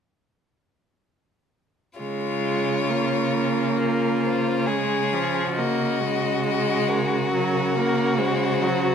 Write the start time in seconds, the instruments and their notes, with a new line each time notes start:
1.99 cello C#3, viola G#3, violin F4 C#5
2.90 viola A#3
3.78 violin F4 A#4
4.25 violin C5
4.67 viola G#3, violin G#4 C#5
5.13 viola F3
5.55 cello C#3, viola A#3, violin F#4 D#5
6.01 viola G#3
6.47 violin D#5
6.89 violin A#4
7.33 viola F#3
7.77 viola A#3
8.17 viola G#3, violin C5
8.62 viola F#3